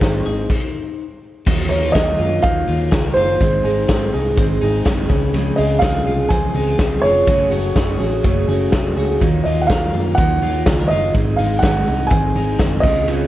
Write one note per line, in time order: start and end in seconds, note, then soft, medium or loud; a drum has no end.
0.00 0.54 G#2 medium
0.00 0.26 D#3 medium
0.00 0.27 G#3 medium
0.00 1.05 D#4 medium
0.00 0.25 G#4 medium
0.00 1.18 C5 medium
0.00 kick loud
0.00 snare loud
0.00 closed hi-hat medium
0.04 0.27 C4 medium
0.04 0.25 D#4 medium
0.25 0.45 G#1 medium
0.25 0.51 C4 soft
0.25 0.50 D#4 medium
0.25 0.55 G#4 medium
0.25 open hi-hat medium
0.29 0.52 G#3 soft
0.50 kick medium
0.50 crash medium
1.47 1.67 D#2 loud
1.47 1.71 D#3 medium
1.47 1.71 F#3 medium
1.47 1.71 A#3 medium
1.47 1.69 F4 loud
1.47 kick loud
1.47 crash medium
1.69 1.90 D#2 medium
1.69 1.96 A#3 soft
1.69 1.83 D#4 medium
1.69 1.95 F4 soft
1.69 1.92 C#5 medium
1.69 open hi-hat medium
1.73 1.94 F#3 soft
1.83 2.17 F4 medium
1.92 2.15 D#2 loud
1.92 2.19 D#3 medium
1.92 2.19 F#3 medium
1.92 2.91 A#4 medium
1.92 2.43 D#5 loud
1.92 kick loud
1.92 snare loud
1.92 hi-hat pedal medium
1.96 2.17 F4 medium
1.96 ride medium
2.19 2.39 F#2 medium
2.19 2.44 F#3 soft
2.19 2.44 A#3 soft
2.19 2.43 F4 soft
2.19 open hi-hat medium
2.42 2.63 D#2 loud
2.42 2.68 D#3 medium
2.42 2.68 F#3 medium
2.42 3.44 D#4 medium
2.42 2.88 F5 loud
2.42 kick loud
2.42 hi-hat pedal medium
2.42 ride medium
2.46 2.69 A#3 medium
2.46 2.67 F4 medium
2.68 2.88 D#2 medium
2.68 2.92 F#3 soft
2.68 2.92 A#3 soft
2.68 2.92 F4 medium
2.68 open hi-hat medium
2.91 3.16 D#3 medium
2.91 3.17 F#3 medium
2.91 3.17 A#3 medium
2.91 3.15 F4 medium
2.91 3.04 G#4 medium
2.91 kick loud
2.91 snare loud
2.91 hi-hat pedal medium
2.91 ride medium
3.04 3.45 A#4 medium
3.14 3.36 F#1 medium
3.14 3.40 F4 medium
3.14 4.08 C5 loud
3.14 open hi-hat medium
3.18 3.41 F#3 soft
3.18 3.41 A#3 soft
3.41 3.60 G#1 loud
3.41 3.65 G#2 medium
3.41 3.65 D#3 medium
3.41 3.65 G#3 medium
3.41 3.65 C4 medium
3.41 3.64 D#4 medium
3.41 3.62 G#4 medium
3.41 kick loud
3.41 hi-hat pedal medium
3.41 ride medium
3.64 3.84 G#1 medium
3.64 3.87 G#3 soft
3.64 3.89 C4 soft
3.64 3.89 D#4 medium
3.64 3.88 G#4 medium
3.64 open hi-hat medium
3.88 4.09 G#1 loud
3.88 4.13 G#3 medium
3.88 4.13 C4 medium
3.88 4.13 D#4 medium
3.88 4.12 G#4 medium
3.88 kick loud
3.88 snare loud
3.88 hi-hat pedal medium
3.88 ride medium
4.13 4.33 C2 medium
4.13 4.39 G#3 soft
4.13 4.38 C4 soft
4.13 4.38 D#4 medium
4.13 4.37 G#4 medium
4.13 open hi-hat medium
4.37 4.57 G#1 loud
4.37 4.62 G#2 medium
4.37 4.62 D#3 medium
4.37 4.63 G#3 medium
4.37 4.63 C4 medium
4.37 4.62 D#4 medium
4.37 kick loud
4.37 hi-hat pedal medium
4.37 ride medium
4.41 4.61 G#4 medium
4.62 4.82 G#1 loud
4.62 4.84 G#3 medium
4.62 4.85 C4 medium
4.62 4.86 D#4 medium
4.62 4.86 G#4 medium
4.62 open hi-hat medium
4.85 5.06 F#1 medium
4.85 5.10 G#3 medium
4.85 5.10 C4 medium
4.85 5.11 D#4 medium
4.85 5.09 G#4 medium
4.85 kick loud
4.85 snare loud
4.85 hi-hat pedal medium
4.85 ride medium
5.09 5.49 C#2 medium
5.09 5.33 C#3 medium
5.09 5.34 G#3 soft
5.09 5.34 C4 medium
5.09 5.34 G#4 medium
5.09 kick loud
5.09 open hi-hat medium
5.34 5.58 C#3 medium
5.34 5.58 F3 medium
5.34 5.59 G#3 medium
5.34 5.58 C4 loud
5.34 5.57 G#4 loud
5.34 hi-hat pedal medium
5.34 ride medium
5.56 5.78 C#2 loud
5.56 5.82 C4 soft
5.56 6.06 F4 medium
5.56 5.82 G#4 medium
5.56 5.82 D#5 medium
5.56 open hi-hat medium
5.60 5.80 G#3 medium
5.79 6.06 F3 medium
5.79 6.06 G#3 medium
5.79 6.06 C4 medium
5.79 6.30 F5 loud
5.79 kick loud
5.79 snare loud
5.79 hi-hat pedal medium
5.79 ride medium
5.84 6.04 G#4 medium
6.05 6.26 C2 medium
6.05 6.30 G#3 soft
6.05 6.30 C4 soft
6.05 6.55 F4 medium
6.05 6.30 G#4 medium
6.05 open hi-hat medium
6.29 6.50 C#2 loud
6.29 6.54 C#3 medium
6.29 6.55 F3 medium
6.29 6.55 G#3 medium
6.29 6.55 C4 medium
6.29 6.53 G#4 medium
6.29 6.75 G#5 medium
6.29 kick loud
6.29 hi-hat pedal medium
6.29 ride medium
6.54 6.75 C#2 loud
6.54 6.78 G#3 soft
6.54 6.79 C4 soft
6.54 6.68 D#4 medium
6.54 6.79 G#4 medium
6.54 open hi-hat medium
6.68 7.03 F4 medium
6.78 6.99 C#2 medium
6.78 7.03 F3 medium
6.78 7.03 G#3 medium
6.78 7.03 C4 medium
6.78 7.01 G#4 medium
6.78 kick loud
6.78 snare loud
6.78 hi-hat pedal medium
6.78 ride medium
7.02 7.23 F1 medium
7.02 7.28 G#3 medium
7.02 7.28 C4 medium
7.02 7.33 F4 medium
7.02 7.27 G#4 medium
7.02 7.95 C#5 loud
7.02 open hi-hat medium
7.27 7.47 F#1 loud
7.27 7.51 F#2 medium
7.27 7.52 C#3 medium
7.27 7.52 F#3 medium
7.27 7.51 A3 medium
7.27 7.50 C#4 loud
7.27 7.50 G#4 loud
7.27 kick loud
7.27 hi-hat pedal medium
7.27 ride medium
7.51 7.72 F#1 loud
7.51 7.74 F#3 soft
7.51 7.75 A3 medium
7.51 7.76 C#4 medium
7.51 7.99 F#4 medium
7.51 7.75 G#4 medium
7.51 open hi-hat medium
7.75 7.96 F#1 medium
7.75 8.00 F#3 medium
7.75 7.99 A3 medium
7.75 7.98 C#4 medium
7.75 7.97 G#4 medium
7.75 kick loud
7.75 snare loud
7.75 hi-hat pedal medium
7.75 ride medium
7.98 8.20 A1 medium
7.98 8.23 F#3 soft
7.98 8.23 A3 medium
7.98 8.23 C#4 medium
7.98 8.49 F#4 medium
7.98 8.23 G#4 medium
7.98 open hi-hat medium
8.22 8.44 F#1 loud
8.22 8.48 F#2 medium
8.22 8.48 C#3 medium
8.22 8.48 F#3 medium
8.22 8.48 A3 medium
8.22 8.47 C#4 medium
8.22 8.46 G#4 medium
8.22 kick loud
8.22 hi-hat pedal medium
8.22 ride medium
8.47 8.68 F#1 loud
8.47 8.69 F#3 soft
8.47 8.71 A3 medium
8.47 8.72 C#4 medium
8.47 8.97 F#4 medium
8.47 8.72 G#4 medium
8.47 open hi-hat medium
8.71 8.96 F#3 medium
8.71 8.96 A3 medium
8.71 8.96 C#4 medium
8.71 8.95 G#4 medium
8.71 kick loud
8.71 snare loud
8.71 hi-hat pedal medium
8.71 ride medium
8.96 9.17 C#2 medium
8.96 9.19 F#3 soft
8.96 9.21 A3 medium
8.96 9.21 C#4 medium
8.96 9.26 F#4 medium
8.96 9.21 G#4 medium
8.96 open hi-hat medium
9.20 9.41 D#2 medium
9.20 9.45 D#3 medium
9.20 9.45 F#3 loud
9.20 9.45 A#3 medium
9.20 9.43 F4 loud
9.20 kick loud
9.20 hi-hat pedal medium
9.20 ride medium
9.44 9.65 D#2 loud
9.44 9.69 F#3 soft
9.44 9.70 A#3 soft
9.44 9.69 F4 medium
9.44 9.62 D#5 medium
9.44 open hi-hat medium
9.61 9.69 F#5 medium
9.67 9.90 D#2 loud
9.67 9.94 F#3 medium
9.67 10.67 A#4 medium
9.67 10.18 F5 medium
9.67 kick loud
9.67 snare loud
9.67 hi-hat pedal medium
9.67 ride medium
9.71 9.94 A#3 medium
9.71 9.94 F4 medium
9.93 10.14 F#2 medium
9.93 10.18 A#3 medium
9.93 10.18 F4 medium
9.93 open hi-hat medium
9.97 10.17 F#3 soft
10.15 10.38 D#2 loud
10.15 10.42 D#3 medium
10.15 10.42 F#3 medium
10.15 11.20 D#4 medium
10.15 10.61 F#5 loud
10.15 kick loud
10.15 hi-hat pedal medium
10.15 ride medium
10.19 10.43 A#3 medium
10.19 10.41 F4 medium
10.42 10.62 D#2 medium
10.42 10.65 F#3 soft
10.42 10.66 A#3 medium
10.42 10.66 F4 soft
10.42 open hi-hat medium
10.65 10.86 C#2 medium
10.65 10.90 D#3 medium
10.65 10.90 F#3 medium
10.65 10.89 A#3 medium
10.65 10.87 F4 medium
10.65 10.78 G#4 medium
10.65 kick loud
10.65 snare loud
10.65 hi-hat pedal medium
10.65 ride medium
10.78 11.19 A#4 medium
10.88 11.10 F#1 medium
10.88 11.14 A#3 medium
10.88 11.14 F4 medium
10.88 11.11 D#5 loud
10.88 open hi-hat medium
10.92 11.14 F#3 soft
11.14 11.34 G#1 loud
11.14 11.38 G#2 medium
11.14 11.39 D#3 medium
11.14 11.39 G#3 medium
11.14 11.38 C4 medium
11.14 11.36 D#4 medium
11.14 kick loud
11.14 hi-hat pedal medium
11.14 ride medium
11.36 11.59 G#1 loud
11.36 11.63 C4 soft
11.36 11.62 D#4 medium
11.36 11.62 F5 medium
11.36 open hi-hat medium
11.41 11.63 G#3 soft
11.59 11.87 D#3 medium
11.59 12.58 G#4 medium
11.59 12.11 F#5 medium
11.59 kick loud
11.59 hi-hat pedal medium
11.63 11.83 G#1 loud
11.63 11.88 G#3 medium
11.63 11.88 C4 medium
11.63 11.86 D#4 medium
11.63 snare loud
11.63 ride medium
11.87 12.07 C2 medium
11.87 12.11 G#3 soft
11.87 12.11 C4 soft
11.87 12.11 D#4 medium
11.87 open hi-hat medium
12.07 12.54 G#5 medium
12.07 hi-hat pedal medium
12.07 ride medium
12.11 12.31 G#1 medium
12.11 12.35 G#2 medium
12.11 12.35 D#3 medium
12.11 12.36 G#3 medium
12.11 12.35 C4 medium
12.11 12.33 D#4 medium
12.11 kick loud
12.35 12.55 G#1 loud
12.35 12.58 G#3 soft
12.35 12.59 C4 soft
12.35 12.59 D#4 medium
12.35 open hi-hat medium
12.58 12.79 F#1 medium
12.58 12.83 D#3 medium
12.58 12.83 G#3 medium
12.58 12.84 C4 medium
12.58 12.82 D#4 medium
12.58 13.27 G#4 medium
12.58 kick loud
12.58 snare loud
12.58 hi-hat pedal medium
12.58 ride medium
12.80 13.23 C#2 medium
12.80 13.07 C#3 medium
12.80 13.07 F4 medium
12.80 13.04 D#5 loud
12.80 kick loud
12.80 crash medium
12.85 13.07 G#3 soft
12.85 13.07 C4 medium
13.07 13.27 C#3 medium
13.07 13.27 G#3 medium
13.07 13.27 C4 medium
13.07 13.27 F4 medium
13.07 hi-hat pedal medium
13.07 ride medium